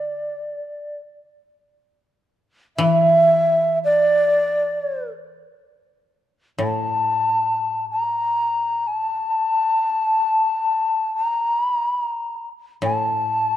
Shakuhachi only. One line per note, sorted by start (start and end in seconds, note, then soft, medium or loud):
0.00 0.97 D5 medium
2.77 3.79 E5 loud
3.85 5.10 D5 medium
6.60 7.86 A5 medium
7.91 8.89 A#5 medium
8.87 11.15 A5 medium
11.16 11.63 A#5 medium
11.63 11.75 B5 medium
11.75 11.89 A#5 medium
11.89 12.01 B5 medium
12.01 12.47 A#5 medium
12.85 13.57 A5 medium